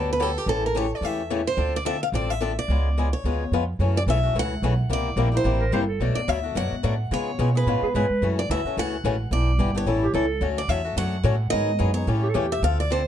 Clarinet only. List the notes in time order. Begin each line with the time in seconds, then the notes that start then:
5.61 A#4
5.73 C5
5.87 A4
7.83 G#4
7.95 B4
10.03 G4
10.14 A4
12.23 G4
12.29 A4
12.35 G4